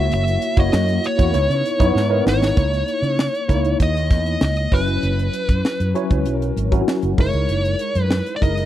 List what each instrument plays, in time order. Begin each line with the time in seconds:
Already playing: tine electric piano A#3 E4 F#4 C#5, lead electric guitar E5
0.12 fretless electric bass F#1, lead electric guitar E5, closed hi-hat
0.28 closed hi-hat
0.42 closed hi-hat
0.56 fretless electric bass F#1, tine electric piano A#3 E4 F#4 C#5, lead electric guitar D#5, kick, closed hi-hat
0.73 fretless electric bass F#2, snare
0.88 closed hi-hat
1.04 lead electric guitar C#5, closed hi-hat
1.17 fretless electric bass E2, tine electric piano A#3 E4 F#4 C#5, kick, closed hi-hat
1.33 fretless electric bass C#2, tine electric piano B3 D#4 E4 C#5, closed hi-hat
1.50 fretless electric bass C#3, closed hi-hat
1.66 closed hi-hat
1.79 fretless electric bass F#2, tine electric piano B3 D#4 E4 C#5, kick, closed hi-hat
1.95 fretless electric bass G#2, snare
2.10 tine electric piano B3 D#4 E4 A#4
2.26 fretless electric bass G#1, lead electric guitar C#5, snare
2.42 snare
2.56 fretless electric bass C#2, tine electric piano A#3 D#4 E4 C#5, kick, closed hi-hat
2.74 closed hi-hat
2.88 closed hi-hat
3.02 fretless electric bass C#3, closed hi-hat
3.19 snare
3.35 closed hi-hat
3.48 fretless electric bass C#2, tine electric piano A#3 D#4 E4 C#5, kick, closed hi-hat
3.65 closed hi-hat
3.80 fretless electric bass D#2, lead electric guitar D#5, kick, closed hi-hat
3.97 closed hi-hat
4.11 fretless electric bass E2, kick, snare, closed hi-hat
4.26 closed hi-hat
4.41 fretless electric bass C#2, lead electric guitar D#5, snare
4.56 closed hi-hat
4.72 fretless electric bass F#1, tine electric piano F#3 C#4 E4 B4, lead electric guitar B4, kick, open hi-hat
4.88 closed hi-hat
5.03 fretless electric bass F#1, closed hi-hat
5.19 closed hi-hat
5.33 closed hi-hat
5.49 fretless electric bass F#2, kick, closed hi-hat
5.65 snare
5.80 fretless electric bass F#2, closed hi-hat
5.94 tine electric piano F#3 C#4 E4 C#5, closed hi-hat
6.10 fretless electric bass C#2, kick, closed hi-hat
6.26 fretless electric bass B1, closed hi-hat
6.33 lead electric guitar A#4
6.42 closed hi-hat
6.56 fretless electric bass G#1, closed hi-hat
6.71 tine electric piano F#3 C#4 E4 F#4, kick, closed hi-hat
6.88 snare
7.03 fretless electric bass F#1, closed hi-hat
7.18 fretless electric bass F#1, tine electric piano G#3 D#4 E4 A#4, lead electric guitar C#5, kick, open hi-hat
7.33 fretless electric bass C#2, closed hi-hat
7.49 fretless electric bass F#1, closed hi-hat
7.65 closed hi-hat
7.79 closed hi-hat
7.95 fretless electric bass F#2, closed hi-hat
8.01 lead electric guitar B4
8.11 snare
8.26 closed hi-hat
8.36 lead electric guitar D5
8.41 fretless electric bass F#1, tine electric piano G#3 D#4 E4 A#4, lead electric guitar D#5, kick, closed hi-hat
8.57 closed hi-hat